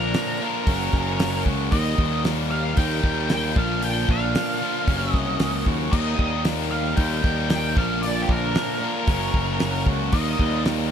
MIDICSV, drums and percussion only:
0, 0, Header, 1, 2, 480
1, 0, Start_track
1, 0, Tempo, 525855
1, 1573, Time_signature, 4, 2, 24, 8
1, 9961, End_track
2, 0, Start_track
2, 0, Title_t, "Drums"
2, 128, Note_on_c, 9, 46, 53
2, 134, Note_on_c, 9, 38, 107
2, 219, Note_off_c, 9, 46, 0
2, 225, Note_off_c, 9, 38, 0
2, 610, Note_on_c, 9, 46, 62
2, 612, Note_on_c, 9, 36, 115
2, 701, Note_off_c, 9, 46, 0
2, 703, Note_off_c, 9, 36, 0
2, 852, Note_on_c, 9, 36, 88
2, 853, Note_on_c, 9, 38, 35
2, 943, Note_off_c, 9, 36, 0
2, 944, Note_off_c, 9, 38, 0
2, 1091, Note_on_c, 9, 46, 63
2, 1097, Note_on_c, 9, 38, 117
2, 1183, Note_off_c, 9, 46, 0
2, 1188, Note_off_c, 9, 38, 0
2, 1332, Note_on_c, 9, 36, 79
2, 1424, Note_off_c, 9, 36, 0
2, 1570, Note_on_c, 9, 46, 59
2, 1572, Note_on_c, 9, 36, 106
2, 1661, Note_off_c, 9, 46, 0
2, 1664, Note_off_c, 9, 36, 0
2, 1812, Note_on_c, 9, 36, 90
2, 1903, Note_off_c, 9, 36, 0
2, 2050, Note_on_c, 9, 46, 55
2, 2055, Note_on_c, 9, 38, 104
2, 2141, Note_off_c, 9, 46, 0
2, 2147, Note_off_c, 9, 38, 0
2, 2527, Note_on_c, 9, 46, 55
2, 2533, Note_on_c, 9, 36, 117
2, 2618, Note_off_c, 9, 46, 0
2, 2624, Note_off_c, 9, 36, 0
2, 2772, Note_on_c, 9, 36, 87
2, 2863, Note_off_c, 9, 36, 0
2, 3008, Note_on_c, 9, 46, 57
2, 3014, Note_on_c, 9, 38, 104
2, 3099, Note_off_c, 9, 46, 0
2, 3105, Note_off_c, 9, 38, 0
2, 3252, Note_on_c, 9, 36, 108
2, 3343, Note_off_c, 9, 36, 0
2, 3490, Note_on_c, 9, 46, 52
2, 3581, Note_off_c, 9, 46, 0
2, 3731, Note_on_c, 9, 36, 94
2, 3823, Note_off_c, 9, 36, 0
2, 3971, Note_on_c, 9, 46, 56
2, 3977, Note_on_c, 9, 38, 116
2, 4063, Note_off_c, 9, 46, 0
2, 4068, Note_off_c, 9, 38, 0
2, 4451, Note_on_c, 9, 36, 105
2, 4451, Note_on_c, 9, 46, 59
2, 4543, Note_off_c, 9, 36, 0
2, 4543, Note_off_c, 9, 46, 0
2, 4690, Note_on_c, 9, 36, 90
2, 4695, Note_on_c, 9, 38, 32
2, 4781, Note_off_c, 9, 36, 0
2, 4786, Note_off_c, 9, 38, 0
2, 4925, Note_on_c, 9, 46, 66
2, 4931, Note_on_c, 9, 38, 107
2, 5016, Note_off_c, 9, 46, 0
2, 5022, Note_off_c, 9, 38, 0
2, 5170, Note_on_c, 9, 36, 81
2, 5262, Note_off_c, 9, 36, 0
2, 5410, Note_on_c, 9, 49, 91
2, 5411, Note_on_c, 9, 36, 106
2, 5502, Note_off_c, 9, 49, 0
2, 5503, Note_off_c, 9, 36, 0
2, 5650, Note_on_c, 9, 36, 89
2, 5741, Note_off_c, 9, 36, 0
2, 5885, Note_on_c, 9, 46, 55
2, 5890, Note_on_c, 9, 38, 103
2, 5976, Note_off_c, 9, 46, 0
2, 5981, Note_off_c, 9, 38, 0
2, 6361, Note_on_c, 9, 46, 57
2, 6368, Note_on_c, 9, 36, 109
2, 6453, Note_off_c, 9, 46, 0
2, 6459, Note_off_c, 9, 36, 0
2, 6609, Note_on_c, 9, 36, 98
2, 6613, Note_on_c, 9, 38, 35
2, 6700, Note_off_c, 9, 36, 0
2, 6704, Note_off_c, 9, 38, 0
2, 6844, Note_on_c, 9, 46, 54
2, 6850, Note_on_c, 9, 38, 113
2, 6936, Note_off_c, 9, 46, 0
2, 6941, Note_off_c, 9, 38, 0
2, 7090, Note_on_c, 9, 36, 115
2, 7181, Note_off_c, 9, 36, 0
2, 7329, Note_on_c, 9, 46, 51
2, 7420, Note_off_c, 9, 46, 0
2, 7568, Note_on_c, 9, 36, 88
2, 7659, Note_off_c, 9, 36, 0
2, 7806, Note_on_c, 9, 46, 50
2, 7812, Note_on_c, 9, 38, 110
2, 7898, Note_off_c, 9, 46, 0
2, 7903, Note_off_c, 9, 38, 0
2, 8283, Note_on_c, 9, 46, 58
2, 8285, Note_on_c, 9, 36, 113
2, 8374, Note_off_c, 9, 46, 0
2, 8377, Note_off_c, 9, 36, 0
2, 8525, Note_on_c, 9, 36, 89
2, 8617, Note_off_c, 9, 36, 0
2, 8761, Note_on_c, 9, 46, 54
2, 8767, Note_on_c, 9, 38, 104
2, 8852, Note_off_c, 9, 46, 0
2, 8858, Note_off_c, 9, 38, 0
2, 9005, Note_on_c, 9, 36, 89
2, 9096, Note_off_c, 9, 36, 0
2, 9241, Note_on_c, 9, 46, 60
2, 9246, Note_on_c, 9, 36, 111
2, 9332, Note_off_c, 9, 46, 0
2, 9337, Note_off_c, 9, 36, 0
2, 9488, Note_on_c, 9, 36, 91
2, 9579, Note_off_c, 9, 36, 0
2, 9725, Note_on_c, 9, 46, 62
2, 9730, Note_on_c, 9, 38, 108
2, 9816, Note_off_c, 9, 46, 0
2, 9821, Note_off_c, 9, 38, 0
2, 9961, End_track
0, 0, End_of_file